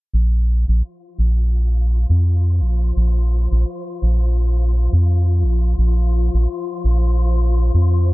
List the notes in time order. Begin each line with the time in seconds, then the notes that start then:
0.13 A#1 F3 F4
0.68 A#1
1.19 A#1
2.09 F2
2.60 A#1
2.96 A#1
3.52 A#1
4.02 A#1
4.93 F2
5.43 A#1
5.78 A#1
6.34 A#1
6.84 A#1
7.74 F2